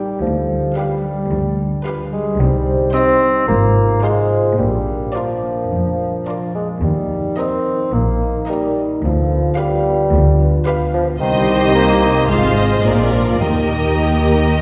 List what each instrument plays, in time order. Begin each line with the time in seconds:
Already playing: harp D#3 G3 D#4 G4 A#4, bassoon G3
0.21 double bass section D2, cello section D2, harp D3, bassoon F3
0.49 harp G3
0.76 bassoon G3, french horn section F4 B4, viola section G4, harp B4, violin section B4 F5
1.04 harp G3
1.30 double bass section D2, cello section D2, harp D4
1.58 harp G3
1.85 french horn section F4 B4, viola section G4, violin section B4 F5, harp B4
2.12 harp G3, bassoon G#3
2.38 cello section C2, double bass section C2, harp C3, bassoon G3, french horn section D#4 C5
2.66 harp C4
2.92 bassoon C4, french horn section D#4 C5, viola section G4, violin section C5 D#5, harp C5
3.21 harp C4
3.47 double bass section G#1, cello section G#2, harp G#2, bassoon A#3, french horn section F4 C5
3.75 harp C4
4.02 bassoon G#3, french horn section F4 C5, viola section F4, harp C5, violin section C5 F5
4.30 harp C4
4.58 double bass section A#1, harp A#2, cello section A#2, bassoon G3, french horn section D4 A#4
4.87 harp A#3
5.13 bassoon F3, french horn section D4 A#4, viola section F4, violin section A#4 D5, harp D5
5.43 harp A#3
5.70 double bass section F1, cello section F2, harp F3
5.99 harp A#3
6.27 viola section F4, violin section A#4 D5, harp D5
6.55 bassoon G#3, harp A#3
6.82 cello section D#2, double bass section D#2, harp D#3, bassoon G3, french horn section D#4 A#4
7.11 harp D#4
7.37 bassoon C4, viola section D#4, harp A#4, violin section A#4 D#5
7.66 harp D#4
7.93 double bass section A#1, cello section A#2, harp A#3, bassoon A#3
8.21 harp D#4
8.48 bassoon G3, viola section D#4, violin section A#4 D#5, harp A#4
8.76 harp D#4
9.03 cello section D2, double bass section D2, harp D3, bassoon F3, french horn section F4 B4
9.31 harp B3
9.57 bassoon G3, viola section G4, violin section B4 F5, harp F5
9.85 harp B3
10.12 double bass section D2, cello section D2, harp D4
10.39 harp B3
10.66 viola section G4, violin section B4 F5, harp F5
10.93 bassoon F3, harp B3
11.19 double bass section C2, cello section C2, harp C3, bassoon D#3, french horn section D#4 G4, viola section G4, violin section C5 D#5
11.48 harp C4
11.75 bassoon A#3, harp D#5
12.02 harp C4
12.28 double bass section G#1, cello section G#2, harp G#2, bassoon G#3, french horn section C4 F4, viola section F4, violin section C5 F5
12.56 harp F4 C5, violin section D#5
12.82 double bass section A#1, cello section A#2, harp A#2, french horn section D4, viola section F4, violin section A#4 D5
13.12 bassoon F3, harp F4 A#4
13.39 cello section D#2, double bass section D#2, bassoon D#3, harp D#3, french horn section D#4 G4, viola section G4, violin section A#4 D#5
13.70 harp D#4
14.25 harp D#4
14.55 harp A#3